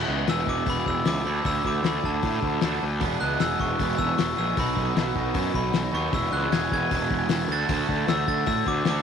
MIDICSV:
0, 0, Header, 1, 6, 480
1, 0, Start_track
1, 0, Key_signature, 4, "major"
1, 0, Tempo, 390117
1, 1787, Time_signature, 4, 2, 24, 8
1, 11098, End_track
2, 0, Start_track
2, 0, Title_t, "Glockenspiel"
2, 0, Program_c, 0, 9
2, 363, Note_on_c, 0, 88, 84
2, 588, Note_off_c, 0, 88, 0
2, 606, Note_on_c, 0, 86, 73
2, 829, Note_off_c, 0, 86, 0
2, 857, Note_on_c, 0, 83, 86
2, 1075, Note_off_c, 0, 83, 0
2, 1082, Note_on_c, 0, 88, 79
2, 1307, Note_off_c, 0, 88, 0
2, 1315, Note_on_c, 0, 86, 72
2, 1544, Note_off_c, 0, 86, 0
2, 1560, Note_on_c, 0, 83, 66
2, 1786, Note_off_c, 0, 83, 0
2, 1801, Note_on_c, 0, 88, 78
2, 2027, Note_off_c, 0, 88, 0
2, 2054, Note_on_c, 0, 86, 68
2, 2274, Note_off_c, 0, 86, 0
2, 2286, Note_on_c, 0, 83, 72
2, 2510, Note_off_c, 0, 83, 0
2, 2527, Note_on_c, 0, 81, 76
2, 2983, Note_off_c, 0, 81, 0
2, 3943, Note_on_c, 0, 90, 83
2, 4179, Note_off_c, 0, 90, 0
2, 4192, Note_on_c, 0, 88, 79
2, 4423, Note_off_c, 0, 88, 0
2, 4435, Note_on_c, 0, 85, 74
2, 4898, Note_off_c, 0, 85, 0
2, 4903, Note_on_c, 0, 88, 93
2, 5139, Note_off_c, 0, 88, 0
2, 5144, Note_on_c, 0, 85, 66
2, 5379, Note_off_c, 0, 85, 0
2, 5395, Note_on_c, 0, 88, 72
2, 5625, Note_off_c, 0, 88, 0
2, 5654, Note_on_c, 0, 83, 81
2, 6573, Note_off_c, 0, 83, 0
2, 6832, Note_on_c, 0, 83, 93
2, 7297, Note_off_c, 0, 83, 0
2, 7317, Note_on_c, 0, 85, 81
2, 7546, Note_off_c, 0, 85, 0
2, 7559, Note_on_c, 0, 88, 72
2, 7784, Note_on_c, 0, 90, 78
2, 7787, Note_off_c, 0, 88, 0
2, 8020, Note_off_c, 0, 90, 0
2, 8027, Note_on_c, 0, 92, 72
2, 8261, Note_off_c, 0, 92, 0
2, 8287, Note_on_c, 0, 92, 92
2, 8744, Note_off_c, 0, 92, 0
2, 9254, Note_on_c, 0, 93, 94
2, 9939, Note_off_c, 0, 93, 0
2, 9954, Note_on_c, 0, 88, 75
2, 10183, Note_off_c, 0, 88, 0
2, 10192, Note_on_c, 0, 93, 77
2, 10421, Note_off_c, 0, 93, 0
2, 10424, Note_on_c, 0, 88, 69
2, 10657, Note_off_c, 0, 88, 0
2, 10677, Note_on_c, 0, 86, 78
2, 10903, Note_off_c, 0, 86, 0
2, 10941, Note_on_c, 0, 86, 83
2, 11098, Note_off_c, 0, 86, 0
2, 11098, End_track
3, 0, Start_track
3, 0, Title_t, "Overdriven electric guitar"
3, 0, Program_c, 1, 29
3, 0, Note_on_c, 1, 40, 78
3, 0, Note_on_c, 1, 47, 76
3, 0, Note_on_c, 1, 52, 76
3, 0, Note_on_c, 1, 56, 82
3, 0, Note_on_c, 1, 59, 79
3, 0, Note_on_c, 1, 64, 86
3, 1519, Note_off_c, 1, 40, 0
3, 1527, Note_off_c, 1, 47, 0
3, 1531, Note_off_c, 1, 52, 0
3, 1535, Note_off_c, 1, 56, 0
3, 1536, Note_off_c, 1, 59, 0
3, 1540, Note_on_c, 1, 50, 78
3, 1544, Note_off_c, 1, 64, 0
3, 1556, Note_on_c, 1, 57, 79
3, 1573, Note_on_c, 1, 62, 85
3, 1580, Note_on_c, 1, 66, 91
3, 3210, Note_off_c, 1, 50, 0
3, 3218, Note_off_c, 1, 57, 0
3, 3226, Note_off_c, 1, 62, 0
3, 3230, Note_off_c, 1, 66, 0
3, 3230, Note_on_c, 1, 50, 67
3, 3241, Note_on_c, 1, 57, 73
3, 3261, Note_on_c, 1, 62, 70
3, 3274, Note_on_c, 1, 66, 74
3, 3455, Note_off_c, 1, 50, 0
3, 3460, Note_off_c, 1, 57, 0
3, 3470, Note_off_c, 1, 62, 0
3, 3477, Note_off_c, 1, 66, 0
3, 3695, Note_on_c, 1, 40, 80
3, 3715, Note_on_c, 1, 47, 84
3, 3719, Note_on_c, 1, 52, 90
3, 3723, Note_on_c, 1, 56, 82
3, 3732, Note_on_c, 1, 59, 89
3, 3745, Note_on_c, 1, 68, 88
3, 5362, Note_off_c, 1, 68, 0
3, 5368, Note_off_c, 1, 40, 0
3, 5375, Note_off_c, 1, 56, 0
3, 5377, Note_on_c, 1, 68, 85
3, 5378, Note_off_c, 1, 47, 0
3, 5380, Note_off_c, 1, 52, 0
3, 5389, Note_off_c, 1, 59, 0
3, 5390, Note_on_c, 1, 56, 70
3, 5394, Note_on_c, 1, 59, 81
3, 5404, Note_on_c, 1, 52, 71
3, 5407, Note_on_c, 1, 47, 61
3, 5425, Note_on_c, 1, 40, 64
3, 5609, Note_off_c, 1, 68, 0
3, 5611, Note_off_c, 1, 47, 0
3, 5615, Note_off_c, 1, 56, 0
3, 5622, Note_off_c, 1, 52, 0
3, 5626, Note_on_c, 1, 47, 79
3, 5633, Note_off_c, 1, 40, 0
3, 5639, Note_on_c, 1, 54, 79
3, 5651, Note_off_c, 1, 59, 0
3, 5651, Note_on_c, 1, 59, 86
3, 5659, Note_on_c, 1, 63, 93
3, 5663, Note_on_c, 1, 66, 81
3, 7278, Note_off_c, 1, 66, 0
3, 7289, Note_off_c, 1, 63, 0
3, 7293, Note_off_c, 1, 47, 0
3, 7293, Note_on_c, 1, 66, 72
3, 7300, Note_off_c, 1, 54, 0
3, 7302, Note_off_c, 1, 59, 0
3, 7303, Note_on_c, 1, 63, 76
3, 7317, Note_on_c, 1, 59, 68
3, 7329, Note_on_c, 1, 54, 63
3, 7345, Note_on_c, 1, 47, 64
3, 7527, Note_off_c, 1, 66, 0
3, 7532, Note_off_c, 1, 63, 0
3, 7539, Note_off_c, 1, 59, 0
3, 7543, Note_off_c, 1, 47, 0
3, 7545, Note_off_c, 1, 54, 0
3, 7552, Note_on_c, 1, 40, 89
3, 7557, Note_on_c, 1, 47, 80
3, 7566, Note_on_c, 1, 52, 89
3, 7577, Note_on_c, 1, 56, 84
3, 7579, Note_on_c, 1, 59, 81
3, 7592, Note_on_c, 1, 68, 87
3, 9215, Note_off_c, 1, 40, 0
3, 9218, Note_off_c, 1, 47, 0
3, 9222, Note_off_c, 1, 52, 0
3, 9228, Note_off_c, 1, 56, 0
3, 9229, Note_off_c, 1, 59, 0
3, 9231, Note_on_c, 1, 50, 87
3, 9235, Note_off_c, 1, 68, 0
3, 9252, Note_on_c, 1, 57, 86
3, 9264, Note_on_c, 1, 62, 92
3, 9272, Note_on_c, 1, 66, 92
3, 10891, Note_off_c, 1, 50, 0
3, 10902, Note_off_c, 1, 57, 0
3, 10908, Note_off_c, 1, 62, 0
3, 10912, Note_off_c, 1, 66, 0
3, 10913, Note_on_c, 1, 50, 75
3, 10934, Note_on_c, 1, 57, 78
3, 10943, Note_on_c, 1, 62, 81
3, 10951, Note_on_c, 1, 66, 81
3, 11098, Note_off_c, 1, 50, 0
3, 11098, Note_off_c, 1, 57, 0
3, 11098, Note_off_c, 1, 62, 0
3, 11098, Note_off_c, 1, 66, 0
3, 11098, End_track
4, 0, Start_track
4, 0, Title_t, "Overdriven electric guitar"
4, 0, Program_c, 2, 29
4, 0, Note_on_c, 2, 40, 66
4, 89, Note_on_c, 2, 56, 62
4, 330, Note_on_c, 2, 68, 65
4, 577, Note_on_c, 2, 59, 58
4, 813, Note_on_c, 2, 52, 65
4, 1039, Note_off_c, 2, 59, 0
4, 1054, Note_on_c, 2, 59, 60
4, 1069, Note_off_c, 2, 40, 0
4, 1274, Note_off_c, 2, 52, 0
4, 1288, Note_on_c, 2, 52, 63
4, 1298, Note_off_c, 2, 56, 0
4, 1538, Note_off_c, 2, 52, 0
4, 1539, Note_off_c, 2, 68, 0
4, 1540, Note_off_c, 2, 59, 0
4, 1548, Note_on_c, 2, 50, 64
4, 1768, Note_off_c, 2, 50, 0
4, 1783, Note_on_c, 2, 50, 64
4, 2028, Note_on_c, 2, 57, 69
4, 2257, Note_on_c, 2, 66, 67
4, 2501, Note_on_c, 2, 62, 61
4, 2730, Note_off_c, 2, 50, 0
4, 2745, Note_on_c, 2, 50, 66
4, 2978, Note_off_c, 2, 62, 0
4, 2993, Note_on_c, 2, 62, 63
4, 3220, Note_off_c, 2, 50, 0
4, 3228, Note_off_c, 2, 57, 0
4, 3235, Note_on_c, 2, 50, 66
4, 3463, Note_off_c, 2, 66, 0
4, 3472, Note_on_c, 2, 57, 64
4, 3710, Note_off_c, 2, 57, 0
4, 3711, Note_off_c, 2, 62, 0
4, 3712, Note_off_c, 2, 50, 0
4, 3715, Note_on_c, 2, 40, 66
4, 3950, Note_on_c, 2, 56, 65
4, 4173, Note_on_c, 2, 68, 71
4, 4425, Note_on_c, 2, 59, 62
4, 4673, Note_on_c, 2, 52, 71
4, 4912, Note_off_c, 2, 40, 0
4, 4914, Note_off_c, 2, 59, 0
4, 4919, Note_on_c, 2, 59, 64
4, 5137, Note_off_c, 2, 52, 0
4, 5150, Note_off_c, 2, 56, 0
4, 5152, Note_on_c, 2, 52, 62
4, 5381, Note_off_c, 2, 68, 0
4, 5401, Note_on_c, 2, 56, 68
4, 5631, Note_off_c, 2, 52, 0
4, 5635, Note_off_c, 2, 56, 0
4, 5639, Note_on_c, 2, 47, 66
4, 5871, Note_off_c, 2, 59, 0
4, 5871, Note_on_c, 2, 59, 68
4, 6106, Note_on_c, 2, 66, 65
4, 6357, Note_on_c, 2, 63, 63
4, 6593, Note_on_c, 2, 54, 67
4, 6800, Note_off_c, 2, 63, 0
4, 6815, Note_on_c, 2, 63, 59
4, 6835, Note_off_c, 2, 47, 0
4, 7048, Note_off_c, 2, 54, 0
4, 7062, Note_on_c, 2, 54, 64
4, 7071, Note_off_c, 2, 59, 0
4, 7306, Note_on_c, 2, 59, 62
4, 7308, Note_off_c, 2, 66, 0
4, 7542, Note_off_c, 2, 63, 0
4, 7544, Note_on_c, 2, 40, 69
4, 7546, Note_off_c, 2, 54, 0
4, 7548, Note_off_c, 2, 59, 0
4, 7777, Note_on_c, 2, 56, 67
4, 8036, Note_on_c, 2, 68, 67
4, 8272, Note_on_c, 2, 59, 66
4, 8517, Note_on_c, 2, 52, 65
4, 8733, Note_off_c, 2, 59, 0
4, 8746, Note_off_c, 2, 40, 0
4, 8748, Note_on_c, 2, 59, 64
4, 8974, Note_off_c, 2, 52, 0
4, 8982, Note_off_c, 2, 56, 0
4, 8988, Note_on_c, 2, 52, 68
4, 9217, Note_off_c, 2, 52, 0
4, 9222, Note_on_c, 2, 50, 67
4, 9228, Note_off_c, 2, 59, 0
4, 9232, Note_off_c, 2, 68, 0
4, 9453, Note_off_c, 2, 50, 0
4, 9468, Note_on_c, 2, 50, 68
4, 9702, Note_on_c, 2, 57, 63
4, 9946, Note_on_c, 2, 66, 73
4, 10188, Note_on_c, 2, 62, 59
4, 10421, Note_off_c, 2, 50, 0
4, 10436, Note_on_c, 2, 50, 70
4, 10660, Note_off_c, 2, 62, 0
4, 10675, Note_on_c, 2, 62, 64
4, 10899, Note_off_c, 2, 50, 0
4, 10902, Note_off_c, 2, 57, 0
4, 10914, Note_on_c, 2, 50, 67
4, 11098, Note_off_c, 2, 50, 0
4, 11098, Note_off_c, 2, 62, 0
4, 11098, Note_off_c, 2, 66, 0
4, 11098, End_track
5, 0, Start_track
5, 0, Title_t, "Picked electric bass"
5, 0, Program_c, 3, 34
5, 102, Note_on_c, 3, 37, 82
5, 288, Note_off_c, 3, 37, 0
5, 337, Note_on_c, 3, 28, 82
5, 524, Note_off_c, 3, 28, 0
5, 579, Note_on_c, 3, 28, 81
5, 766, Note_off_c, 3, 28, 0
5, 816, Note_on_c, 3, 28, 83
5, 1004, Note_off_c, 3, 28, 0
5, 1064, Note_on_c, 3, 28, 79
5, 1249, Note_off_c, 3, 28, 0
5, 1296, Note_on_c, 3, 37, 81
5, 1484, Note_off_c, 3, 37, 0
5, 1532, Note_on_c, 3, 38, 78
5, 1722, Note_off_c, 3, 38, 0
5, 1784, Note_on_c, 3, 38, 86
5, 1969, Note_off_c, 3, 38, 0
5, 2029, Note_on_c, 3, 38, 85
5, 2212, Note_off_c, 3, 38, 0
5, 2245, Note_on_c, 3, 38, 85
5, 2438, Note_off_c, 3, 38, 0
5, 2512, Note_on_c, 3, 38, 76
5, 2694, Note_off_c, 3, 38, 0
5, 2745, Note_on_c, 3, 45, 85
5, 2930, Note_off_c, 3, 45, 0
5, 2982, Note_on_c, 3, 38, 86
5, 3168, Note_off_c, 3, 38, 0
5, 3236, Note_on_c, 3, 38, 78
5, 3417, Note_off_c, 3, 38, 0
5, 3481, Note_on_c, 3, 38, 80
5, 3708, Note_on_c, 3, 28, 91
5, 3726, Note_off_c, 3, 38, 0
5, 3892, Note_off_c, 3, 28, 0
5, 3956, Note_on_c, 3, 37, 82
5, 4137, Note_off_c, 3, 37, 0
5, 4181, Note_on_c, 3, 28, 84
5, 4368, Note_off_c, 3, 28, 0
5, 4429, Note_on_c, 3, 28, 80
5, 4613, Note_off_c, 3, 28, 0
5, 4669, Note_on_c, 3, 28, 89
5, 4853, Note_off_c, 3, 28, 0
5, 4902, Note_on_c, 3, 28, 84
5, 5089, Note_off_c, 3, 28, 0
5, 5152, Note_on_c, 3, 28, 76
5, 5335, Note_off_c, 3, 28, 0
5, 5389, Note_on_c, 3, 34, 85
5, 5573, Note_off_c, 3, 34, 0
5, 5633, Note_on_c, 3, 35, 82
5, 5816, Note_off_c, 3, 35, 0
5, 5864, Note_on_c, 3, 35, 82
5, 6050, Note_off_c, 3, 35, 0
5, 6094, Note_on_c, 3, 35, 83
5, 6284, Note_off_c, 3, 35, 0
5, 6345, Note_on_c, 3, 35, 76
5, 6531, Note_off_c, 3, 35, 0
5, 6578, Note_on_c, 3, 42, 88
5, 6767, Note_off_c, 3, 42, 0
5, 6826, Note_on_c, 3, 35, 80
5, 7012, Note_off_c, 3, 35, 0
5, 7062, Note_on_c, 3, 35, 76
5, 7249, Note_off_c, 3, 35, 0
5, 7294, Note_on_c, 3, 39, 82
5, 7484, Note_off_c, 3, 39, 0
5, 7539, Note_on_c, 3, 28, 85
5, 7727, Note_off_c, 3, 28, 0
5, 7773, Note_on_c, 3, 37, 81
5, 7964, Note_off_c, 3, 37, 0
5, 8021, Note_on_c, 3, 28, 83
5, 8208, Note_off_c, 3, 28, 0
5, 8265, Note_on_c, 3, 28, 73
5, 8450, Note_off_c, 3, 28, 0
5, 8506, Note_on_c, 3, 28, 84
5, 8692, Note_off_c, 3, 28, 0
5, 8741, Note_on_c, 3, 28, 85
5, 8928, Note_off_c, 3, 28, 0
5, 8968, Note_on_c, 3, 28, 82
5, 9160, Note_off_c, 3, 28, 0
5, 9204, Note_on_c, 3, 38, 83
5, 9397, Note_off_c, 3, 38, 0
5, 9461, Note_on_c, 3, 38, 91
5, 9647, Note_off_c, 3, 38, 0
5, 9705, Note_on_c, 3, 38, 88
5, 9890, Note_off_c, 3, 38, 0
5, 9941, Note_on_c, 3, 38, 88
5, 10127, Note_off_c, 3, 38, 0
5, 10184, Note_on_c, 3, 38, 81
5, 10369, Note_off_c, 3, 38, 0
5, 10425, Note_on_c, 3, 45, 88
5, 10609, Note_off_c, 3, 45, 0
5, 10665, Note_on_c, 3, 38, 84
5, 10849, Note_off_c, 3, 38, 0
5, 10893, Note_on_c, 3, 38, 79
5, 11081, Note_off_c, 3, 38, 0
5, 11098, End_track
6, 0, Start_track
6, 0, Title_t, "Drums"
6, 338, Note_on_c, 9, 46, 52
6, 343, Note_on_c, 9, 38, 93
6, 462, Note_off_c, 9, 46, 0
6, 466, Note_off_c, 9, 38, 0
6, 579, Note_on_c, 9, 36, 74
6, 702, Note_off_c, 9, 36, 0
6, 813, Note_on_c, 9, 46, 51
6, 820, Note_on_c, 9, 36, 104
6, 936, Note_off_c, 9, 46, 0
6, 943, Note_off_c, 9, 36, 0
6, 1060, Note_on_c, 9, 36, 74
6, 1183, Note_off_c, 9, 36, 0
6, 1295, Note_on_c, 9, 46, 53
6, 1300, Note_on_c, 9, 38, 107
6, 1418, Note_off_c, 9, 46, 0
6, 1423, Note_off_c, 9, 38, 0
6, 1783, Note_on_c, 9, 46, 50
6, 1786, Note_on_c, 9, 36, 99
6, 1906, Note_off_c, 9, 46, 0
6, 1909, Note_off_c, 9, 36, 0
6, 2025, Note_on_c, 9, 36, 66
6, 2148, Note_off_c, 9, 36, 0
6, 2267, Note_on_c, 9, 46, 46
6, 2272, Note_on_c, 9, 38, 106
6, 2390, Note_off_c, 9, 46, 0
6, 2395, Note_off_c, 9, 38, 0
6, 2507, Note_on_c, 9, 36, 72
6, 2630, Note_off_c, 9, 36, 0
6, 2737, Note_on_c, 9, 46, 48
6, 2745, Note_on_c, 9, 36, 92
6, 2860, Note_off_c, 9, 46, 0
6, 2868, Note_off_c, 9, 36, 0
6, 2983, Note_on_c, 9, 36, 72
6, 3106, Note_off_c, 9, 36, 0
6, 3213, Note_on_c, 9, 46, 51
6, 3218, Note_on_c, 9, 38, 110
6, 3336, Note_off_c, 9, 46, 0
6, 3341, Note_off_c, 9, 38, 0
6, 3698, Note_on_c, 9, 46, 53
6, 3706, Note_on_c, 9, 36, 107
6, 3821, Note_off_c, 9, 46, 0
6, 3829, Note_off_c, 9, 36, 0
6, 4181, Note_on_c, 9, 46, 55
6, 4185, Note_on_c, 9, 38, 95
6, 4304, Note_off_c, 9, 46, 0
6, 4308, Note_off_c, 9, 38, 0
6, 4428, Note_on_c, 9, 36, 76
6, 4551, Note_off_c, 9, 36, 0
6, 4667, Note_on_c, 9, 46, 54
6, 4668, Note_on_c, 9, 36, 100
6, 4790, Note_off_c, 9, 46, 0
6, 4791, Note_off_c, 9, 36, 0
6, 4906, Note_on_c, 9, 36, 79
6, 5029, Note_off_c, 9, 36, 0
6, 5148, Note_on_c, 9, 46, 55
6, 5153, Note_on_c, 9, 38, 105
6, 5271, Note_off_c, 9, 46, 0
6, 5276, Note_off_c, 9, 38, 0
6, 5622, Note_on_c, 9, 46, 56
6, 5626, Note_on_c, 9, 36, 104
6, 5745, Note_off_c, 9, 46, 0
6, 5749, Note_off_c, 9, 36, 0
6, 5866, Note_on_c, 9, 36, 69
6, 5989, Note_off_c, 9, 36, 0
6, 6110, Note_on_c, 9, 46, 49
6, 6115, Note_on_c, 9, 38, 102
6, 6233, Note_off_c, 9, 46, 0
6, 6238, Note_off_c, 9, 38, 0
6, 6344, Note_on_c, 9, 36, 76
6, 6467, Note_off_c, 9, 36, 0
6, 6574, Note_on_c, 9, 46, 51
6, 6581, Note_on_c, 9, 36, 104
6, 6697, Note_off_c, 9, 46, 0
6, 6704, Note_off_c, 9, 36, 0
6, 6820, Note_on_c, 9, 36, 76
6, 6944, Note_off_c, 9, 36, 0
6, 7055, Note_on_c, 9, 46, 51
6, 7060, Note_on_c, 9, 38, 105
6, 7178, Note_off_c, 9, 46, 0
6, 7183, Note_off_c, 9, 38, 0
6, 7541, Note_on_c, 9, 46, 51
6, 7543, Note_on_c, 9, 36, 107
6, 7664, Note_off_c, 9, 46, 0
6, 7666, Note_off_c, 9, 36, 0
6, 8025, Note_on_c, 9, 46, 53
6, 8030, Note_on_c, 9, 38, 101
6, 8148, Note_off_c, 9, 46, 0
6, 8153, Note_off_c, 9, 38, 0
6, 8268, Note_on_c, 9, 36, 75
6, 8391, Note_off_c, 9, 36, 0
6, 8501, Note_on_c, 9, 46, 55
6, 8506, Note_on_c, 9, 36, 106
6, 8624, Note_off_c, 9, 46, 0
6, 8629, Note_off_c, 9, 36, 0
6, 8743, Note_on_c, 9, 36, 78
6, 8866, Note_off_c, 9, 36, 0
6, 8970, Note_on_c, 9, 46, 61
6, 8975, Note_on_c, 9, 38, 109
6, 9093, Note_off_c, 9, 46, 0
6, 9098, Note_off_c, 9, 38, 0
6, 9461, Note_on_c, 9, 46, 59
6, 9465, Note_on_c, 9, 36, 111
6, 9584, Note_off_c, 9, 46, 0
6, 9588, Note_off_c, 9, 36, 0
6, 9706, Note_on_c, 9, 36, 70
6, 9829, Note_off_c, 9, 36, 0
6, 9943, Note_on_c, 9, 46, 50
6, 9948, Note_on_c, 9, 38, 105
6, 10067, Note_off_c, 9, 46, 0
6, 10071, Note_off_c, 9, 38, 0
6, 10184, Note_on_c, 9, 36, 75
6, 10307, Note_off_c, 9, 36, 0
6, 10411, Note_on_c, 9, 46, 49
6, 10423, Note_on_c, 9, 36, 101
6, 10534, Note_off_c, 9, 46, 0
6, 10546, Note_off_c, 9, 36, 0
6, 10662, Note_on_c, 9, 36, 79
6, 10785, Note_off_c, 9, 36, 0
6, 10890, Note_on_c, 9, 46, 54
6, 10895, Note_on_c, 9, 38, 110
6, 11013, Note_off_c, 9, 46, 0
6, 11018, Note_off_c, 9, 38, 0
6, 11098, End_track
0, 0, End_of_file